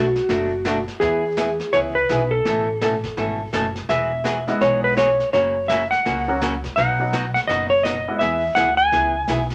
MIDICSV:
0, 0, Header, 1, 6, 480
1, 0, Start_track
1, 0, Tempo, 359928
1, 1352, Time_signature, 4, 2, 24, 8
1, 12733, End_track
2, 0, Start_track
2, 0, Title_t, "Electric slide guitar"
2, 0, Program_c, 0, 29
2, 0, Note_on_c, 0, 66, 79
2, 1111, Note_off_c, 0, 66, 0
2, 1333, Note_on_c, 0, 68, 84
2, 2305, Note_on_c, 0, 73, 87
2, 2333, Note_off_c, 0, 68, 0
2, 2387, Note_off_c, 0, 73, 0
2, 2601, Note_on_c, 0, 71, 90
2, 3080, Note_on_c, 0, 69, 75
2, 3103, Note_off_c, 0, 71, 0
2, 4655, Note_off_c, 0, 69, 0
2, 5193, Note_on_c, 0, 76, 85
2, 6154, Note_on_c, 0, 73, 89
2, 6184, Note_off_c, 0, 76, 0
2, 6436, Note_off_c, 0, 73, 0
2, 6457, Note_on_c, 0, 71, 79
2, 6624, Note_off_c, 0, 71, 0
2, 6636, Note_on_c, 0, 73, 88
2, 7095, Note_off_c, 0, 73, 0
2, 7111, Note_on_c, 0, 73, 86
2, 7578, Note_on_c, 0, 76, 88
2, 7609, Note_off_c, 0, 73, 0
2, 7872, Note_off_c, 0, 76, 0
2, 7878, Note_on_c, 0, 78, 93
2, 8794, Note_off_c, 0, 78, 0
2, 9014, Note_on_c, 0, 78, 89
2, 9778, Note_off_c, 0, 78, 0
2, 9794, Note_on_c, 0, 78, 98
2, 9860, Note_off_c, 0, 78, 0
2, 9968, Note_on_c, 0, 75, 90
2, 10262, Note_off_c, 0, 75, 0
2, 10267, Note_on_c, 0, 73, 93
2, 10446, Note_off_c, 0, 73, 0
2, 10448, Note_on_c, 0, 75, 96
2, 10919, Note_off_c, 0, 75, 0
2, 10924, Note_on_c, 0, 76, 94
2, 11403, Note_on_c, 0, 78, 97
2, 11432, Note_off_c, 0, 76, 0
2, 11695, Note_off_c, 0, 78, 0
2, 11700, Note_on_c, 0, 80, 99
2, 12620, Note_off_c, 0, 80, 0
2, 12733, End_track
3, 0, Start_track
3, 0, Title_t, "Upright piano"
3, 0, Program_c, 1, 0
3, 5966, Note_on_c, 1, 56, 72
3, 5976, Note_on_c, 1, 59, 68
3, 5977, Note_on_c, 1, 64, 67
3, 5982, Note_on_c, 1, 66, 79
3, 6595, Note_off_c, 1, 56, 0
3, 6600, Note_off_c, 1, 59, 0
3, 6601, Note_off_c, 1, 64, 0
3, 6603, Note_off_c, 1, 66, 0
3, 8376, Note_on_c, 1, 54, 69
3, 8379, Note_on_c, 1, 58, 62
3, 8384, Note_on_c, 1, 61, 63
3, 8392, Note_on_c, 1, 66, 71
3, 8538, Note_off_c, 1, 54, 0
3, 8539, Note_off_c, 1, 58, 0
3, 8542, Note_off_c, 1, 61, 0
3, 8546, Note_off_c, 1, 66, 0
3, 9330, Note_on_c, 1, 54, 62
3, 9333, Note_on_c, 1, 59, 56
3, 9340, Note_on_c, 1, 63, 59
3, 9343, Note_on_c, 1, 66, 67
3, 9494, Note_off_c, 1, 54, 0
3, 9496, Note_off_c, 1, 59, 0
3, 9499, Note_off_c, 1, 63, 0
3, 9501, Note_off_c, 1, 66, 0
3, 10772, Note_on_c, 1, 56, 61
3, 10774, Note_on_c, 1, 59, 62
3, 10779, Note_on_c, 1, 64, 61
3, 10784, Note_on_c, 1, 66, 74
3, 10934, Note_off_c, 1, 56, 0
3, 10935, Note_off_c, 1, 59, 0
3, 10938, Note_off_c, 1, 64, 0
3, 10940, Note_off_c, 1, 66, 0
3, 12733, End_track
4, 0, Start_track
4, 0, Title_t, "Hollow-body jazz guitar"
4, 0, Program_c, 2, 26
4, 386, Note_on_c, 2, 47, 50
4, 392, Note_on_c, 2, 54, 62
4, 396, Note_on_c, 2, 57, 58
4, 399, Note_on_c, 2, 62, 57
4, 405, Note_on_c, 2, 66, 65
4, 674, Note_off_c, 2, 47, 0
4, 677, Note_off_c, 2, 54, 0
4, 679, Note_off_c, 2, 57, 0
4, 680, Note_off_c, 2, 62, 0
4, 684, Note_off_c, 2, 66, 0
4, 866, Note_on_c, 2, 47, 77
4, 870, Note_on_c, 2, 54, 76
4, 875, Note_on_c, 2, 57, 78
4, 879, Note_on_c, 2, 66, 78
4, 880, Note_on_c, 2, 62, 84
4, 1020, Note_off_c, 2, 47, 0
4, 1022, Note_off_c, 2, 54, 0
4, 1024, Note_off_c, 2, 57, 0
4, 1027, Note_off_c, 2, 62, 0
4, 1027, Note_off_c, 2, 66, 0
4, 1347, Note_on_c, 2, 52, 58
4, 1349, Note_on_c, 2, 59, 62
4, 1357, Note_on_c, 2, 64, 61
4, 1362, Note_on_c, 2, 68, 58
4, 1635, Note_off_c, 2, 52, 0
4, 1636, Note_off_c, 2, 59, 0
4, 1640, Note_off_c, 2, 64, 0
4, 1643, Note_off_c, 2, 68, 0
4, 1829, Note_on_c, 2, 52, 67
4, 1835, Note_on_c, 2, 59, 69
4, 1839, Note_on_c, 2, 64, 73
4, 1841, Note_on_c, 2, 68, 85
4, 1982, Note_off_c, 2, 52, 0
4, 1985, Note_off_c, 2, 59, 0
4, 1987, Note_off_c, 2, 64, 0
4, 1988, Note_off_c, 2, 68, 0
4, 2306, Note_on_c, 2, 52, 53
4, 2312, Note_on_c, 2, 59, 56
4, 2318, Note_on_c, 2, 64, 62
4, 2322, Note_on_c, 2, 68, 62
4, 2595, Note_off_c, 2, 52, 0
4, 2598, Note_off_c, 2, 59, 0
4, 2601, Note_off_c, 2, 64, 0
4, 2603, Note_off_c, 2, 68, 0
4, 2791, Note_on_c, 2, 52, 75
4, 2801, Note_on_c, 2, 59, 74
4, 2807, Note_on_c, 2, 64, 75
4, 2812, Note_on_c, 2, 68, 86
4, 2944, Note_off_c, 2, 52, 0
4, 2949, Note_off_c, 2, 59, 0
4, 2952, Note_off_c, 2, 64, 0
4, 2954, Note_off_c, 2, 68, 0
4, 3271, Note_on_c, 2, 47, 55
4, 3278, Note_on_c, 2, 52, 60
4, 3283, Note_on_c, 2, 57, 56
4, 3288, Note_on_c, 2, 61, 60
4, 3290, Note_on_c, 2, 69, 66
4, 3558, Note_off_c, 2, 47, 0
4, 3561, Note_off_c, 2, 52, 0
4, 3564, Note_off_c, 2, 57, 0
4, 3566, Note_off_c, 2, 61, 0
4, 3568, Note_off_c, 2, 69, 0
4, 3754, Note_on_c, 2, 47, 73
4, 3757, Note_on_c, 2, 52, 74
4, 3763, Note_on_c, 2, 57, 75
4, 3768, Note_on_c, 2, 61, 76
4, 3772, Note_on_c, 2, 69, 74
4, 3905, Note_off_c, 2, 47, 0
4, 3907, Note_off_c, 2, 52, 0
4, 3910, Note_off_c, 2, 57, 0
4, 3912, Note_off_c, 2, 61, 0
4, 3915, Note_off_c, 2, 69, 0
4, 4230, Note_on_c, 2, 47, 53
4, 4234, Note_on_c, 2, 52, 52
4, 4239, Note_on_c, 2, 57, 59
4, 4242, Note_on_c, 2, 61, 57
4, 4247, Note_on_c, 2, 69, 55
4, 4518, Note_off_c, 2, 47, 0
4, 4520, Note_off_c, 2, 52, 0
4, 4523, Note_off_c, 2, 57, 0
4, 4524, Note_off_c, 2, 61, 0
4, 4526, Note_off_c, 2, 69, 0
4, 4705, Note_on_c, 2, 47, 73
4, 4709, Note_on_c, 2, 52, 76
4, 4716, Note_on_c, 2, 57, 77
4, 4717, Note_on_c, 2, 61, 77
4, 4720, Note_on_c, 2, 69, 89
4, 4862, Note_off_c, 2, 47, 0
4, 4863, Note_off_c, 2, 52, 0
4, 4867, Note_off_c, 2, 57, 0
4, 4868, Note_off_c, 2, 61, 0
4, 4869, Note_off_c, 2, 69, 0
4, 5187, Note_on_c, 2, 52, 61
4, 5191, Note_on_c, 2, 54, 59
4, 5195, Note_on_c, 2, 59, 58
4, 5196, Note_on_c, 2, 66, 55
4, 5203, Note_on_c, 2, 68, 64
4, 5477, Note_off_c, 2, 52, 0
4, 5479, Note_off_c, 2, 54, 0
4, 5481, Note_off_c, 2, 59, 0
4, 5481, Note_off_c, 2, 66, 0
4, 5484, Note_off_c, 2, 68, 0
4, 5656, Note_on_c, 2, 52, 76
4, 5663, Note_on_c, 2, 54, 73
4, 5669, Note_on_c, 2, 59, 71
4, 5671, Note_on_c, 2, 66, 75
4, 5676, Note_on_c, 2, 68, 81
4, 5817, Note_off_c, 2, 52, 0
4, 5821, Note_off_c, 2, 54, 0
4, 5824, Note_off_c, 2, 59, 0
4, 5824, Note_off_c, 2, 66, 0
4, 5827, Note_off_c, 2, 68, 0
4, 6145, Note_on_c, 2, 52, 51
4, 6150, Note_on_c, 2, 54, 54
4, 6154, Note_on_c, 2, 59, 55
4, 6159, Note_on_c, 2, 66, 57
4, 6164, Note_on_c, 2, 68, 53
4, 6436, Note_off_c, 2, 52, 0
4, 6438, Note_off_c, 2, 54, 0
4, 6440, Note_off_c, 2, 59, 0
4, 6443, Note_off_c, 2, 66, 0
4, 6445, Note_off_c, 2, 68, 0
4, 6623, Note_on_c, 2, 52, 82
4, 6628, Note_on_c, 2, 54, 78
4, 6631, Note_on_c, 2, 59, 79
4, 6635, Note_on_c, 2, 66, 76
4, 6641, Note_on_c, 2, 68, 87
4, 6781, Note_off_c, 2, 52, 0
4, 6783, Note_off_c, 2, 54, 0
4, 6785, Note_off_c, 2, 59, 0
4, 6787, Note_off_c, 2, 66, 0
4, 6790, Note_off_c, 2, 68, 0
4, 7109, Note_on_c, 2, 49, 59
4, 7115, Note_on_c, 2, 54, 54
4, 7117, Note_on_c, 2, 58, 59
4, 7123, Note_on_c, 2, 61, 57
4, 7128, Note_on_c, 2, 66, 63
4, 7398, Note_off_c, 2, 49, 0
4, 7401, Note_off_c, 2, 54, 0
4, 7402, Note_off_c, 2, 58, 0
4, 7405, Note_off_c, 2, 61, 0
4, 7407, Note_off_c, 2, 66, 0
4, 7597, Note_on_c, 2, 49, 71
4, 7604, Note_on_c, 2, 54, 75
4, 7605, Note_on_c, 2, 58, 74
4, 7609, Note_on_c, 2, 61, 83
4, 7616, Note_on_c, 2, 66, 80
4, 7748, Note_off_c, 2, 49, 0
4, 7751, Note_off_c, 2, 54, 0
4, 7752, Note_off_c, 2, 58, 0
4, 7754, Note_off_c, 2, 61, 0
4, 7757, Note_off_c, 2, 66, 0
4, 8074, Note_on_c, 2, 49, 50
4, 8077, Note_on_c, 2, 54, 55
4, 8084, Note_on_c, 2, 58, 53
4, 8085, Note_on_c, 2, 61, 59
4, 8092, Note_on_c, 2, 66, 58
4, 8360, Note_off_c, 2, 49, 0
4, 8361, Note_off_c, 2, 54, 0
4, 8365, Note_off_c, 2, 58, 0
4, 8366, Note_off_c, 2, 61, 0
4, 8369, Note_off_c, 2, 66, 0
4, 8554, Note_on_c, 2, 49, 77
4, 8557, Note_on_c, 2, 54, 76
4, 8562, Note_on_c, 2, 58, 73
4, 8564, Note_on_c, 2, 61, 81
4, 8566, Note_on_c, 2, 66, 85
4, 8706, Note_off_c, 2, 49, 0
4, 8707, Note_off_c, 2, 54, 0
4, 8710, Note_off_c, 2, 58, 0
4, 8711, Note_off_c, 2, 61, 0
4, 8712, Note_off_c, 2, 66, 0
4, 9034, Note_on_c, 2, 47, 57
4, 9039, Note_on_c, 2, 54, 62
4, 9042, Note_on_c, 2, 59, 58
4, 9048, Note_on_c, 2, 63, 61
4, 9048, Note_on_c, 2, 66, 61
4, 9319, Note_off_c, 2, 47, 0
4, 9322, Note_off_c, 2, 54, 0
4, 9324, Note_off_c, 2, 59, 0
4, 9327, Note_off_c, 2, 63, 0
4, 9327, Note_off_c, 2, 66, 0
4, 9507, Note_on_c, 2, 47, 78
4, 9511, Note_on_c, 2, 54, 75
4, 9514, Note_on_c, 2, 59, 79
4, 9520, Note_on_c, 2, 63, 76
4, 9522, Note_on_c, 2, 66, 89
4, 9662, Note_off_c, 2, 47, 0
4, 9664, Note_off_c, 2, 54, 0
4, 9665, Note_off_c, 2, 59, 0
4, 9668, Note_off_c, 2, 63, 0
4, 9669, Note_off_c, 2, 66, 0
4, 9982, Note_on_c, 2, 47, 53
4, 9991, Note_on_c, 2, 54, 59
4, 9997, Note_on_c, 2, 59, 62
4, 9997, Note_on_c, 2, 63, 62
4, 10000, Note_on_c, 2, 66, 64
4, 10272, Note_off_c, 2, 47, 0
4, 10277, Note_off_c, 2, 54, 0
4, 10280, Note_off_c, 2, 59, 0
4, 10280, Note_off_c, 2, 63, 0
4, 10282, Note_off_c, 2, 66, 0
4, 10459, Note_on_c, 2, 47, 72
4, 10466, Note_on_c, 2, 54, 81
4, 10469, Note_on_c, 2, 59, 75
4, 10472, Note_on_c, 2, 63, 77
4, 10478, Note_on_c, 2, 66, 74
4, 10617, Note_off_c, 2, 47, 0
4, 10621, Note_off_c, 2, 54, 0
4, 10622, Note_off_c, 2, 59, 0
4, 10623, Note_off_c, 2, 63, 0
4, 10626, Note_off_c, 2, 66, 0
4, 10946, Note_on_c, 2, 52, 53
4, 10952, Note_on_c, 2, 59, 58
4, 10957, Note_on_c, 2, 64, 58
4, 10962, Note_on_c, 2, 68, 62
4, 11234, Note_off_c, 2, 52, 0
4, 11237, Note_off_c, 2, 59, 0
4, 11239, Note_off_c, 2, 64, 0
4, 11242, Note_off_c, 2, 68, 0
4, 11416, Note_on_c, 2, 52, 71
4, 11426, Note_on_c, 2, 59, 79
4, 11429, Note_on_c, 2, 64, 77
4, 11436, Note_on_c, 2, 68, 85
4, 11575, Note_off_c, 2, 52, 0
4, 11579, Note_off_c, 2, 59, 0
4, 11581, Note_off_c, 2, 64, 0
4, 11585, Note_off_c, 2, 68, 0
4, 11899, Note_on_c, 2, 52, 50
4, 11907, Note_on_c, 2, 59, 58
4, 11910, Note_on_c, 2, 64, 54
4, 11915, Note_on_c, 2, 68, 61
4, 12189, Note_off_c, 2, 52, 0
4, 12193, Note_off_c, 2, 59, 0
4, 12194, Note_off_c, 2, 64, 0
4, 12197, Note_off_c, 2, 68, 0
4, 12381, Note_on_c, 2, 52, 65
4, 12387, Note_on_c, 2, 59, 74
4, 12394, Note_on_c, 2, 64, 82
4, 12398, Note_on_c, 2, 68, 78
4, 12536, Note_off_c, 2, 52, 0
4, 12539, Note_off_c, 2, 59, 0
4, 12542, Note_off_c, 2, 64, 0
4, 12544, Note_off_c, 2, 68, 0
4, 12733, End_track
5, 0, Start_track
5, 0, Title_t, "Upright bass"
5, 0, Program_c, 3, 32
5, 0, Note_on_c, 3, 35, 89
5, 204, Note_off_c, 3, 35, 0
5, 395, Note_on_c, 3, 30, 77
5, 1162, Note_off_c, 3, 30, 0
5, 1359, Note_on_c, 3, 40, 88
5, 2125, Note_off_c, 3, 40, 0
5, 2322, Note_on_c, 3, 37, 82
5, 2727, Note_off_c, 3, 37, 0
5, 2795, Note_on_c, 3, 35, 80
5, 3203, Note_off_c, 3, 35, 0
5, 3273, Note_on_c, 3, 33, 87
5, 4042, Note_off_c, 3, 33, 0
5, 4229, Note_on_c, 3, 32, 75
5, 4640, Note_off_c, 3, 32, 0
5, 4711, Note_on_c, 3, 30, 81
5, 5121, Note_off_c, 3, 30, 0
5, 5188, Note_on_c, 3, 28, 77
5, 5960, Note_off_c, 3, 28, 0
5, 6152, Note_on_c, 3, 35, 82
5, 6922, Note_off_c, 3, 35, 0
5, 7124, Note_on_c, 3, 30, 84
5, 7889, Note_off_c, 3, 30, 0
5, 8076, Note_on_c, 3, 37, 83
5, 8844, Note_off_c, 3, 37, 0
5, 9031, Note_on_c, 3, 35, 88
5, 9800, Note_off_c, 3, 35, 0
5, 9995, Note_on_c, 3, 30, 83
5, 10761, Note_off_c, 3, 30, 0
5, 10955, Note_on_c, 3, 40, 86
5, 11337, Note_off_c, 3, 40, 0
5, 11425, Note_on_c, 3, 38, 88
5, 11835, Note_off_c, 3, 38, 0
5, 11904, Note_on_c, 3, 37, 79
5, 12314, Note_off_c, 3, 37, 0
5, 12374, Note_on_c, 3, 35, 77
5, 12733, Note_off_c, 3, 35, 0
5, 12733, End_track
6, 0, Start_track
6, 0, Title_t, "Drums"
6, 207, Note_on_c, 9, 38, 42
6, 340, Note_off_c, 9, 38, 0
6, 385, Note_on_c, 9, 25, 47
6, 385, Note_on_c, 9, 38, 41
6, 519, Note_off_c, 9, 38, 0
6, 866, Note_on_c, 9, 38, 59
6, 866, Note_on_c, 9, 44, 54
6, 999, Note_off_c, 9, 38, 0
6, 999, Note_off_c, 9, 44, 0
6, 1170, Note_on_c, 9, 38, 36
6, 1303, Note_off_c, 9, 38, 0
6, 1345, Note_off_c, 9, 25, 0
6, 1345, Note_on_c, 9, 25, 49
6, 1345, Note_on_c, 9, 38, 44
6, 1479, Note_off_c, 9, 38, 0
6, 1825, Note_on_c, 9, 38, 57
6, 1825, Note_on_c, 9, 44, 65
6, 1959, Note_off_c, 9, 38, 0
6, 1959, Note_off_c, 9, 44, 0
6, 2128, Note_on_c, 9, 38, 41
6, 2262, Note_off_c, 9, 38, 0
6, 2307, Note_off_c, 9, 25, 0
6, 2307, Note_on_c, 9, 25, 48
6, 2307, Note_on_c, 9, 38, 43
6, 2440, Note_off_c, 9, 38, 0
6, 2789, Note_on_c, 9, 38, 62
6, 2789, Note_on_c, 9, 44, 52
6, 2923, Note_off_c, 9, 38, 0
6, 2923, Note_off_c, 9, 44, 0
6, 3271, Note_off_c, 9, 25, 0
6, 3271, Note_on_c, 9, 25, 44
6, 3271, Note_on_c, 9, 38, 42
6, 3404, Note_off_c, 9, 38, 0
6, 3753, Note_on_c, 9, 38, 66
6, 3753, Note_on_c, 9, 44, 51
6, 3886, Note_off_c, 9, 38, 0
6, 3886, Note_off_c, 9, 44, 0
6, 4051, Note_on_c, 9, 36, 64
6, 4052, Note_on_c, 9, 38, 39
6, 4184, Note_off_c, 9, 36, 0
6, 4185, Note_off_c, 9, 38, 0
6, 4231, Note_off_c, 9, 25, 0
6, 4231, Note_on_c, 9, 25, 50
6, 4231, Note_on_c, 9, 38, 41
6, 4364, Note_off_c, 9, 38, 0
6, 4713, Note_on_c, 9, 38, 61
6, 4713, Note_on_c, 9, 44, 60
6, 4847, Note_off_c, 9, 38, 0
6, 4847, Note_off_c, 9, 44, 0
6, 5008, Note_on_c, 9, 38, 37
6, 5141, Note_off_c, 9, 38, 0
6, 5186, Note_off_c, 9, 25, 0
6, 5186, Note_on_c, 9, 25, 44
6, 5186, Note_on_c, 9, 38, 43
6, 5319, Note_off_c, 9, 38, 0
6, 5668, Note_on_c, 9, 38, 60
6, 5668, Note_on_c, 9, 44, 48
6, 5801, Note_off_c, 9, 38, 0
6, 5801, Note_off_c, 9, 44, 0
6, 5969, Note_on_c, 9, 38, 38
6, 6103, Note_off_c, 9, 38, 0
6, 6152, Note_off_c, 9, 25, 0
6, 6152, Note_on_c, 9, 25, 45
6, 6152, Note_on_c, 9, 38, 43
6, 6285, Note_off_c, 9, 38, 0
6, 6634, Note_on_c, 9, 38, 59
6, 6634, Note_on_c, 9, 44, 54
6, 6767, Note_off_c, 9, 38, 0
6, 6767, Note_off_c, 9, 44, 0
6, 6933, Note_on_c, 9, 38, 38
6, 7066, Note_off_c, 9, 38, 0
6, 7112, Note_off_c, 9, 25, 0
6, 7112, Note_on_c, 9, 25, 49
6, 7112, Note_on_c, 9, 38, 42
6, 7246, Note_off_c, 9, 38, 0
6, 7591, Note_on_c, 9, 38, 66
6, 7591, Note_on_c, 9, 44, 57
6, 7724, Note_off_c, 9, 38, 0
6, 7724, Note_off_c, 9, 44, 0
6, 7894, Note_on_c, 9, 38, 39
6, 8027, Note_off_c, 9, 38, 0
6, 8076, Note_off_c, 9, 25, 0
6, 8076, Note_on_c, 9, 25, 49
6, 8076, Note_on_c, 9, 38, 41
6, 8209, Note_off_c, 9, 38, 0
6, 8555, Note_on_c, 9, 38, 64
6, 8555, Note_on_c, 9, 44, 67
6, 8689, Note_off_c, 9, 38, 0
6, 8689, Note_off_c, 9, 44, 0
6, 8854, Note_on_c, 9, 36, 54
6, 8856, Note_on_c, 9, 38, 38
6, 8988, Note_off_c, 9, 36, 0
6, 8990, Note_off_c, 9, 38, 0
6, 9035, Note_off_c, 9, 25, 0
6, 9035, Note_on_c, 9, 25, 53
6, 9035, Note_on_c, 9, 38, 46
6, 9169, Note_off_c, 9, 38, 0
6, 9511, Note_on_c, 9, 38, 63
6, 9511, Note_on_c, 9, 44, 50
6, 9644, Note_off_c, 9, 38, 0
6, 9644, Note_off_c, 9, 44, 0
6, 9808, Note_on_c, 9, 38, 40
6, 9941, Note_off_c, 9, 38, 0
6, 9989, Note_off_c, 9, 25, 0
6, 9989, Note_on_c, 9, 25, 46
6, 9989, Note_on_c, 9, 38, 44
6, 10122, Note_off_c, 9, 38, 0
6, 10470, Note_on_c, 9, 38, 60
6, 10470, Note_on_c, 9, 44, 56
6, 10603, Note_off_c, 9, 38, 0
6, 10603, Note_off_c, 9, 44, 0
6, 10943, Note_off_c, 9, 25, 0
6, 10943, Note_on_c, 9, 25, 52
6, 10943, Note_on_c, 9, 38, 47
6, 11076, Note_off_c, 9, 38, 0
6, 11417, Note_on_c, 9, 38, 61
6, 11417, Note_on_c, 9, 44, 49
6, 11551, Note_off_c, 9, 38, 0
6, 11551, Note_off_c, 9, 44, 0
6, 11898, Note_off_c, 9, 25, 0
6, 11898, Note_on_c, 9, 25, 45
6, 11898, Note_on_c, 9, 38, 43
6, 12031, Note_off_c, 9, 38, 0
6, 12372, Note_on_c, 9, 38, 65
6, 12372, Note_on_c, 9, 44, 53
6, 12505, Note_off_c, 9, 38, 0
6, 12505, Note_off_c, 9, 44, 0
6, 12671, Note_on_c, 9, 38, 39
6, 12733, Note_off_c, 9, 25, 0
6, 12733, Note_off_c, 9, 38, 0
6, 12733, End_track
0, 0, End_of_file